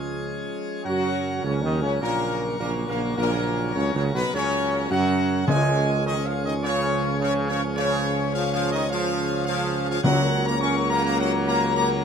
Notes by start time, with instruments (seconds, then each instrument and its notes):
Already playing: tuba C#2, pipe organ F3 G#3 C#4 G#4, french horn section C#4, trumpet section C#5
0.85 tuba F#2, pipe organ C#3 F#3 C#4 A#4, trombone section F#3, french horn section F#4, trumpet section F#5
1.43 tuba C#2, trombone section C#3, french horn section C#4, trumpet section C#5
1.62 tuba D#2, trombone section D#3, french horn section D#4, trumpet section D#5
1.81 tuba C#2, trombone section C#3, french horn section C#4, trumpet section C#5
2.01 tuba A#1, trombone section A#2, french horn section A#3, trumpet section A#4
2.59 tuba A#1, trombone section A#2, french horn section A#3, trumpet section A#4
2.88 tuba A#1, trombone section A#2, french horn section A#3, trumpet section A#4
3.17 tuba A#1, trombone section A#2, french horn section A#3, trumpet section A#4
3.74 tuba C#2, trombone section C#3, french horn section C#4, trumpet section C#5
3.94 tuba C#2, trombone section C#3, french horn section C#4, trumpet section C#5
4.13 tuba B1, trombone section B2, french horn section B3, trumpet section B4
4.32 tuba C#2, trombone section C#3, french horn section C#4, trumpet section C#5
4.88 tuba F#2, trombone section F#3, french horn section F#4, trumpet section F#5
5.46 tuba C#2, pipe organ C#3 F3 C#4 G#4, timpani C#3, french horn section F3 C#4, trombone section G#3, trumpet section G#5
6.04 trombone section D#3, trumpet section D#5
6.23 trombone section F3, trumpet section F5
6.43 trombone section D#3, trumpet section D#5
6.62 trombone section C#3, trumpet section C#5
7.19 trombone section C#3, trumpet section C#5
7.48 trombone section C#3, trumpet section C#5
7.76 trombone section C#3, trumpet section C#5
8.33 trombone section F3, trumpet section F5
8.52 trombone section F3, trumpet section F5
8.71 trombone section D#3, trumpet section D#5
8.90 trombone section F3, trumpet section F5
9.46 trombone section F3, trumpet section F5
9.89 trombone section F3, trumpet section F5
10.03 tuba C#2, timpani C#3, pipe organ C#3 F#3 C#4 A#4, french horn section F#3 A#3, trombone section F#3, trumpet section F#5
10.46 trombone section A#3, trumpet section A#5
10.60 trombone section C#4, trumpet section C#6
10.90 trombone section A#3, trumpet section A#5
11.05 trombone section A#3, trumpet section A#5
11.19 trombone section F#3, trumpet section F#5
11.46 trombone section A#3, trumpet section A#5
11.75 trombone section A#3, trumpet section A#5